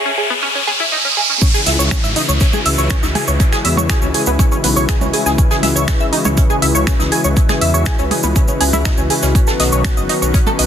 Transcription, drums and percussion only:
1.41 kick loud
1.41 closed hi-hat medium
1.41 cabasa medium
1.54 snare soft
1.54 cabasa soft
1.66 snare soft
1.66 closed hi-hat medium
1.66 open hi-hat loud
1.80 cabasa medium
1.91 finger snap loud
1.91 kick loud
1.91 snare loud
1.91 closed hi-hat medium
1.91 percussion blips medium
1.91 cabasa medium
2.04 cabasa soft
2.16 closed hi-hat medium
2.16 open hi-hat medium
2.29 cabasa medium
2.40 kick loud
2.40 closed hi-hat loud
2.40 cabasa medium
2.53 percussion blips loud
2.53 cabasa soft
2.66 closed hi-hat medium
2.66 open hi-hat loud
2.78 cabasa medium
2.90 finger snap loud
2.90 kick loud
2.90 snare loud
2.90 closed hi-hat medium
2.90 cabasa medium
3.03 snare medium
3.03 cabasa soft
3.15 closed hi-hat medium
3.15 open hi-hat medium
3.15 percussion blips medium
3.28 cabasa medium
3.40 kick loud
3.40 closed hi-hat medium
3.40 cabasa medium
3.52 finger snap soft
3.52 snare medium
3.52 cabasa soft
3.65 closed hi-hat medium
3.65 open hi-hat loud
3.77 percussion blips medium
3.77 cabasa medium
3.89 finger snap loud
3.89 kick loud
3.89 snare loud
3.89 closed hi-hat medium
3.89 cabasa medium
4.02 cabasa soft
4.14 closed hi-hat medium
4.14 open hi-hat loud
4.26 cabasa medium
4.39 kick loud
4.39 closed hi-hat medium
4.39 percussion blips medium
4.39 cabasa medium
4.52 cabasa soft
4.63 closed hi-hat medium
4.63 open hi-hat loud
4.76 cabasa medium
4.89 finger snap loud
4.89 kick loud
4.89 snare loud
4.89 closed hi-hat medium
4.89 cabasa medium
5.01 percussion blips medium
5.01 cabasa soft
5.13 closed hi-hat medium
5.13 open hi-hat medium
5.26 snare soft
5.26 cabasa medium
5.38 kick loud
5.38 closed hi-hat medium
5.38 cabasa medium
5.50 snare soft
5.50 cabasa soft
5.63 snare soft
5.63 closed hi-hat medium
5.63 open hi-hat loud
5.63 percussion blips medium
5.76 cabasa medium
5.88 finger snap loud
5.88 kick loud
5.88 snare loud
5.88 closed hi-hat medium
5.88 cabasa medium
6.00 cabasa soft
6.13 closed hi-hat medium
6.13 open hi-hat loud
6.25 percussion blips medium
6.25 cabasa medium
6.37 kick loud
6.37 closed hi-hat loud
6.37 cabasa medium
6.50 cabasa soft
6.62 closed hi-hat medium
6.62 open hi-hat loud
6.75 cabasa medium
6.87 finger snap loud
6.87 kick loud
6.87 snare loud
6.87 closed hi-hat medium
6.87 percussion blips medium
6.87 cabasa medium
7.00 snare soft
7.00 cabasa soft
7.12 closed hi-hat medium
7.12 open hi-hat loud
7.24 cabasa medium
7.37 kick loud
7.37 closed hi-hat medium
7.37 cabasa medium
7.49 finger snap soft
7.49 snare medium
7.49 percussion blips medium
7.49 cabasa soft
7.61 closed hi-hat medium
7.61 open hi-hat loud
7.74 cabasa medium
7.86 finger snap loud
7.86 kick loud
7.86 snare loud
7.86 closed hi-hat medium
7.86 cabasa medium
7.99 cabasa soft
8.11 closed hi-hat medium
8.11 open hi-hat loud
8.11 percussion blips medium
8.23 cabasa medium
8.36 kick loud
8.36 closed hi-hat medium
8.36 cabasa medium
8.48 cabasa soft
8.61 closed hi-hat medium
8.61 open hi-hat loud
8.73 percussion blips medium
8.73 cabasa medium
8.85 finger snap loud
8.85 kick loud
8.85 snare loud
8.85 closed hi-hat medium
8.85 cabasa medium
8.98 cabasa soft
9.10 closed hi-hat medium
9.10 open hi-hat loud
9.22 snare soft
9.22 cabasa medium
9.35 kick loud
9.35 closed hi-hat medium
9.35 cabasa medium
9.47 snare soft
9.47 cabasa soft
9.60 snare soft
9.60 closed hi-hat medium
9.60 open hi-hat loud
9.72 cabasa medium
9.85 finger snap loud
9.85 kick loud
9.85 snare loud
9.85 closed hi-hat medium
9.85 percussion blips medium
9.85 cabasa medium
9.97 cabasa soft
10.09 closed hi-hat medium
10.09 open hi-hat medium
10.22 cabasa medium
10.34 kick loud
10.34 closed hi-hat medium
10.34 cabasa medium
10.47 percussion blips medium
10.47 cabasa soft
10.59 closed hi-hat medium
10.59 open hi-hat loud

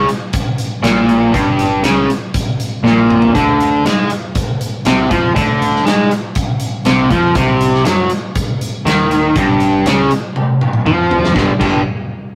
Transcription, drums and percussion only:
0.09 closed hi-hat medium
0.33 kick loud
0.33 closed hi-hat medium
0.58 closed hi-hat medium
0.84 snare loud
0.84 closed hi-hat medium
1.09 closed hi-hat medium
1.34 kick loud
1.34 closed hi-hat medium
1.59 closed hi-hat medium
1.84 snare loud
1.84 closed hi-hat medium
2.10 closed hi-hat medium
2.34 kick loud
2.34 closed hi-hat medium
2.60 closed hi-hat medium
2.86 snare medium
3.10 mid tom medium
3.22 floor tom medium
3.35 kick medium
3.35 closed hi-hat medium
3.60 closed hi-hat medium
3.86 snare medium
3.86 closed hi-hat medium
4.10 closed hi-hat medium
4.35 kick loud
4.35 closed hi-hat medium
4.61 closed hi-hat medium
4.85 snare loud
4.85 closed hi-hat medium
5.11 kick medium
5.11 closed hi-hat medium
5.36 kick loud
5.36 closed hi-hat medium
5.62 closed hi-hat medium
5.76 snare soft
5.87 snare loud
5.87 closed hi-hat medium
6.11 closed hi-hat medium
6.35 kick loud
6.35 closed hi-hat medium
6.60 closed hi-hat medium
6.85 snare loud
6.85 closed hi-hat medium
7.11 kick medium
7.11 closed hi-hat medium
7.35 kick loud
7.35 closed hi-hat medium
7.61 closed hi-hat medium
7.75 snare soft
7.85 snare loud
7.85 closed hi-hat medium
8.10 closed hi-hat medium
8.35 kick loud
8.35 closed hi-hat medium
8.61 closed hi-hat medium
8.87 snare loud
8.87 closed hi-hat medium
9.11 closed hi-hat medium
9.36 kick loud
9.36 closed hi-hat medium
9.60 closed hi-hat medium
9.86 snare loud
9.86 closed hi-hat medium
10.11 closed hi-hat medium
10.36 high tom medium
10.61 mid tom medium
10.73 mid tom medium
10.86 mid tom medium
11.11 floor tom medium
11.25 snare medium
11.36 kick loud
11.36 snare medium
11.61 kick medium
11.61 crash medium

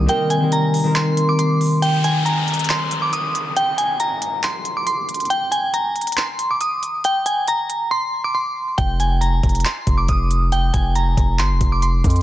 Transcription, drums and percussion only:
0.09 closed hi-hat medium
0.30 closed hi-hat medium
0.52 closed hi-hat medium
0.74 open hi-hat medium
0.96 clap loud
0.96 closed hi-hat loud
1.17 closed hi-hat medium
1.39 closed hi-hat medium
1.61 open hi-hat medium
1.82 closed hi-hat medium
2.04 closed hi-hat medium
2.26 closed hi-hat medium
2.48 closed hi-hat soft
2.54 closed hi-hat medium
2.59 closed hi-hat medium
2.64 closed hi-hat medium
2.70 clap loud
2.91 closed hi-hat medium
3.13 closed hi-hat medium
3.35 closed hi-hat medium
3.56 closed hi-hat medium
3.78 closed hi-hat medium
4.00 closed hi-hat medium
4.22 closed hi-hat medium
4.43 clap loud
4.43 closed hi-hat medium
4.65 closed hi-hat loud
4.87 closed hi-hat medium
5.09 closed hi-hat medium
5.14 closed hi-hat medium
5.20 closed hi-hat medium
5.25 closed hi-hat soft
5.30 closed hi-hat medium
5.52 closed hi-hat medium
5.74 closed hi-hat medium
5.96 closed hi-hat soft
6.01 closed hi-hat medium
6.07 closed hi-hat medium
6.12 closed hi-hat medium
6.17 clap loud
6.17 closed hi-hat medium
6.39 closed hi-hat loud
6.61 closed hi-hat medium
6.83 closed hi-hat medium
7.04 closed hi-hat medium
7.26 closed hi-hat medium
7.48 closed hi-hat medium
7.70 closed hi-hat medium
8.78 kick loud
8.78 closed hi-hat medium
9.00 closed hi-hat medium
9.22 closed hi-hat medium
9.43 kick medium
9.43 closed hi-hat soft
9.49 closed hi-hat medium
9.55 closed hi-hat medium
9.60 closed hi-hat medium
9.65 clap loud
9.65 closed hi-hat medium
9.87 kick medium
9.87 closed hi-hat loud
10.08 kick loud
10.08 closed hi-hat medium
10.31 closed hi-hat medium
10.52 closed hi-hat medium
10.74 kick medium
10.74 closed hi-hat medium
10.95 closed hi-hat medium
11.17 kick medium
11.17 closed hi-hat medium
11.39 clap loud
11.39 closed hi-hat medium
11.61 kick medium
11.61 closed hi-hat medium
11.82 closed hi-hat medium
12.04 kick loud
12.04 closed hi-hat medium
12.10 closed hi-hat medium
12.16 closed hi-hat medium

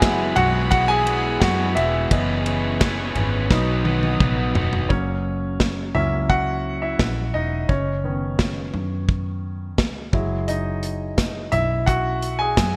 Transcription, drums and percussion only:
0.02 kick loud
0.02 snare loud
0.02 ride medium
0.36 floor tom medium
0.36 ride medium
0.71 kick loud
0.71 ride medium
1.07 ride medium
1.42 kick loud
1.42 snare loud
1.42 ride medium
1.77 ride medium
2.11 kick loud
2.11 ride medium
2.46 ride medium
2.81 kick loud
2.81 snare loud
2.81 ride medium
3.15 floor tom medium
3.15 ride soft
3.51 kick loud
3.51 snare medium
3.85 high tom medium
4.03 high tom medium
4.20 kick loud
4.20 mid tom medium
4.55 floor tom loud
4.73 floor tom medium
4.90 kick medium
5.60 kick medium
5.60 snare loud
5.95 floor tom medium
6.30 kick medium
6.99 kick loud
6.99 snare loud
7.69 kick medium
8.39 kick medium
8.39 snare loud
8.74 floor tom medium
9.09 kick loud
9.78 kick loud
9.78 snare loud
10.13 kick medium
10.48 closed hi-hat medium
10.83 closed hi-hat medium
11.18 kick loud
11.18 snare loud
11.18 closed hi-hat medium
11.52 closed hi-hat medium
11.52 floor tom medium
11.87 kick medium
11.87 closed hi-hat medium
12.22 closed hi-hat medium
12.57 kick loud
12.57 snare loud
12.57 closed hi-hat medium

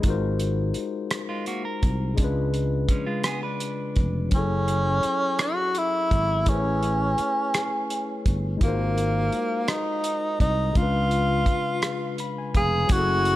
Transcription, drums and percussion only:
0.03 kick medium
0.03 closed hi-hat medium
0.40 closed hi-hat soft
0.74 closed hi-hat soft
1.11 cross-stick loud
1.11 closed hi-hat medium
1.46 closed hi-hat medium
1.83 kick medium
1.83 closed hi-hat soft
2.18 kick medium
2.18 closed hi-hat medium
2.54 closed hi-hat soft
2.89 kick medium
2.89 closed hi-hat soft
3.24 cross-stick loud
3.24 closed hi-hat medium
3.60 closed hi-hat medium
3.96 kick medium
3.96 closed hi-hat soft
4.31 kick medium
4.31 closed hi-hat medium
4.68 closed hi-hat soft
5.03 closed hi-hat soft
5.39 cross-stick loud
5.39 closed hi-hat medium
5.75 closed hi-hat soft
6.11 kick medium
6.11 closed hi-hat soft
6.46 kick medium
6.46 closed hi-hat medium
6.83 closed hi-hat soft
7.18 closed hi-hat soft
7.54 cross-stick medium
7.54 closed hi-hat medium
7.90 closed hi-hat medium
8.26 kick medium
8.26 closed hi-hat soft
8.61 kick loud
8.61 closed hi-hat medium
8.98 closed hi-hat soft
9.32 closed hi-hat soft
9.68 cross-stick loud
9.68 closed hi-hat medium
10.04 closed hi-hat medium
10.40 kick medium
10.40 closed hi-hat soft
10.75 kick medium
10.75 closed hi-hat medium
11.11 closed hi-hat soft
11.46 kick medium
11.46 closed hi-hat soft
11.82 cross-stick loud
11.82 closed hi-hat medium
12.18 closed hi-hat soft
12.54 kick medium
12.54 closed hi-hat soft
12.89 kick loud
12.89 closed hi-hat medium
13.25 closed hi-hat soft

